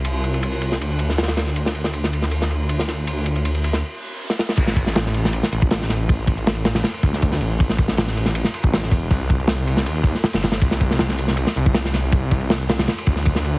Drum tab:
CC |--------------------------------|--------------------------------|--------------------------------|x-------------------------------|
RD |x---x-x-x-x-x---x---x---xxx-x---|x---x---x---x---x---x---x---x---|x---x-x-x-x-x-------------------|x---x---x---x---x---x---x---x---|
SD |--------------o-------o-ooo-o-o-|--o---o---o---o---o-------o-o---|--------------o-----------o-o-o-|--o---o-o-o---o---o-----o-o-o---|
BD |--------------------------------|--------------------------------|--------------------------------|o---o-----------------o---------|

CC |--------------------------------|--------------------------------|--------------------------------|--------------------------------|
RD |x---x-x-x-x-x-x-x-x-x---x---x---|x---x---x---x---x---x---x---x---|x---x-x-x-x-x---x---x---x-x-x-x-|x---x---x---x---x---x---x---x---|
SD |--------o---o-o-o-----o---o-----|--o---o-o-o---o---o-----o-o-----|--------o-----o-------o-o-o-o-o-|--o---o-o-o---o---o-----o-o-o---|
BD |o---o---------------o---o-------|o---o-----------------o-----o---|o---o---------------o-----------|o---o-----------------o---------|

CC |--------------------------------|
RD |x---x-x-x-x-x-x-x-x-x---x---x---|
SD |--------o---o-o-o-----o---o-----|
BD |o---o---------------o---o-------|